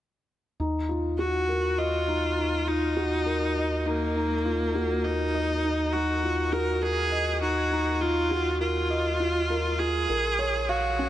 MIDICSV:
0, 0, Header, 1, 4, 480
1, 0, Start_track
1, 0, Key_signature, -6, "minor"
1, 0, Tempo, 594059
1, 482, Time_signature, 4, 2, 24, 8
1, 8962, End_track
2, 0, Start_track
2, 0, Title_t, "Felt piano"
2, 0, Program_c, 0, 0
2, 483, Note_on_c, 0, 63, 58
2, 619, Note_off_c, 0, 63, 0
2, 622, Control_c, 0, 64, 127
2, 719, Note_on_c, 0, 65, 56
2, 949, Note_off_c, 0, 65, 0
2, 961, Note_on_c, 0, 66, 52
2, 1189, Note_off_c, 0, 66, 0
2, 1201, Note_on_c, 0, 70, 52
2, 1338, Note_off_c, 0, 70, 0
2, 1440, Note_on_c, 0, 75, 63
2, 1669, Note_off_c, 0, 75, 0
2, 1678, Note_on_c, 0, 63, 56
2, 1905, Note_off_c, 0, 63, 0
2, 1917, Note_on_c, 0, 63, 54
2, 2056, Note_off_c, 0, 63, 0
2, 2156, Note_on_c, 0, 65, 55
2, 2387, Note_off_c, 0, 65, 0
2, 2398, Note_on_c, 0, 66, 63
2, 2628, Note_off_c, 0, 66, 0
2, 2636, Note_on_c, 0, 70, 56
2, 2776, Note_off_c, 0, 70, 0
2, 2878, Note_on_c, 0, 75, 55
2, 3108, Note_off_c, 0, 75, 0
2, 3118, Note_on_c, 0, 63, 55
2, 3348, Note_off_c, 0, 63, 0
2, 3360, Note_on_c, 0, 63, 62
2, 3498, Note_off_c, 0, 63, 0
2, 3600, Note_on_c, 0, 65, 62
2, 3829, Note_off_c, 0, 65, 0
2, 3838, Note_on_c, 0, 66, 59
2, 4068, Note_off_c, 0, 66, 0
2, 4081, Note_on_c, 0, 70, 55
2, 4218, Note_off_c, 0, 70, 0
2, 4318, Note_on_c, 0, 75, 64
2, 4548, Note_off_c, 0, 75, 0
2, 4558, Note_on_c, 0, 63, 61
2, 4786, Note_off_c, 0, 63, 0
2, 4798, Note_on_c, 0, 63, 57
2, 4937, Note_off_c, 0, 63, 0
2, 5039, Note_on_c, 0, 65, 57
2, 5269, Note_off_c, 0, 65, 0
2, 5273, Note_on_c, 0, 66, 63
2, 5506, Note_off_c, 0, 66, 0
2, 5515, Note_on_c, 0, 70, 64
2, 5655, Note_off_c, 0, 70, 0
2, 5752, Note_on_c, 0, 75, 60
2, 5985, Note_off_c, 0, 75, 0
2, 5992, Note_on_c, 0, 63, 57
2, 6223, Note_off_c, 0, 63, 0
2, 6235, Note_on_c, 0, 63, 63
2, 6375, Note_off_c, 0, 63, 0
2, 6472, Note_on_c, 0, 65, 61
2, 6705, Note_off_c, 0, 65, 0
2, 6714, Note_on_c, 0, 66, 57
2, 6946, Note_off_c, 0, 66, 0
2, 6956, Note_on_c, 0, 70, 60
2, 7095, Note_off_c, 0, 70, 0
2, 7193, Note_on_c, 0, 75, 64
2, 7425, Note_off_c, 0, 75, 0
2, 7434, Note_on_c, 0, 65, 61
2, 7666, Note_off_c, 0, 65, 0
2, 7677, Note_on_c, 0, 70, 54
2, 7907, Note_off_c, 0, 70, 0
2, 7914, Note_on_c, 0, 65, 52
2, 8055, Note_off_c, 0, 65, 0
2, 8158, Note_on_c, 0, 70, 63
2, 8170, Control_c, 0, 64, 0
2, 8309, Control_c, 0, 64, 127
2, 8388, Note_off_c, 0, 70, 0
2, 8394, Note_on_c, 0, 73, 59
2, 8535, Note_off_c, 0, 73, 0
2, 8638, Note_on_c, 0, 77, 61
2, 8868, Note_off_c, 0, 77, 0
2, 8879, Note_on_c, 0, 61, 59
2, 8962, Note_off_c, 0, 61, 0
2, 8962, End_track
3, 0, Start_track
3, 0, Title_t, "Viola"
3, 0, Program_c, 1, 41
3, 957, Note_on_c, 1, 66, 76
3, 1441, Note_on_c, 1, 65, 82
3, 1453, Note_off_c, 1, 66, 0
3, 2162, Note_on_c, 1, 63, 88
3, 2174, Note_off_c, 1, 65, 0
3, 3119, Note_on_c, 1, 58, 80
3, 3131, Note_off_c, 1, 63, 0
3, 4076, Note_on_c, 1, 63, 89
3, 4088, Note_off_c, 1, 58, 0
3, 4789, Note_on_c, 1, 66, 84
3, 4801, Note_off_c, 1, 63, 0
3, 5268, Note_on_c, 1, 70, 91
3, 5280, Note_off_c, 1, 66, 0
3, 5507, Note_on_c, 1, 68, 94
3, 5519, Note_off_c, 1, 70, 0
3, 5986, Note_off_c, 1, 68, 0
3, 5991, Note_on_c, 1, 66, 90
3, 6468, Note_on_c, 1, 65, 93
3, 6480, Note_off_c, 1, 66, 0
3, 6949, Note_off_c, 1, 65, 0
3, 6953, Note_on_c, 1, 65, 85
3, 7909, Note_on_c, 1, 68, 96
3, 7921, Note_off_c, 1, 65, 0
3, 8634, Note_on_c, 1, 66, 77
3, 8646, Note_off_c, 1, 68, 0
3, 8962, Note_off_c, 1, 66, 0
3, 8962, End_track
4, 0, Start_track
4, 0, Title_t, "Analog synth bass"
4, 0, Program_c, 2, 38
4, 483, Note_on_c, 2, 39, 75
4, 8138, Note_off_c, 2, 39, 0
4, 8159, Note_on_c, 2, 34, 83
4, 8962, Note_off_c, 2, 34, 0
4, 8962, End_track
0, 0, End_of_file